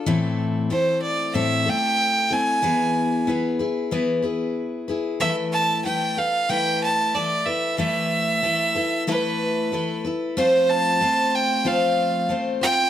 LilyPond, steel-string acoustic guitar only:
\new Staff \with { instrumentName = "Steel-string acoustic guitar" } { \time 4/4 \key e \phrygian \tempo 4 = 93 <a, e a c' e' a'>4 <a c' e' a'>4 <a, e a c' e' a'>8 <a c' e' a'>4 <a c' e' a'>8 | <e b e' gis' b'>4 <b e' gis' b'>8 <e' gis' b'>8 <e b e' gis' b'>8 <e' gis' b'>4 <e' gis' b'>8 | <e a e' a' b'>4 <a e' a' b'>8 <a' b'>8 <e a e' a' b'>4 <a e' a' b'>8 <e' a' b'>8 | <e a e' a' b'>4 <a e' a' b'>8 <e' a' b'>8 <e a e' a' b'>4 <a e' a' b'>8 <e' a' b'>8 |
<f a c' f' c''>4 <a c' f' c''>4 <f a c' f' c''>4 <a c' f' c''>8 <c' f' c''>8 | }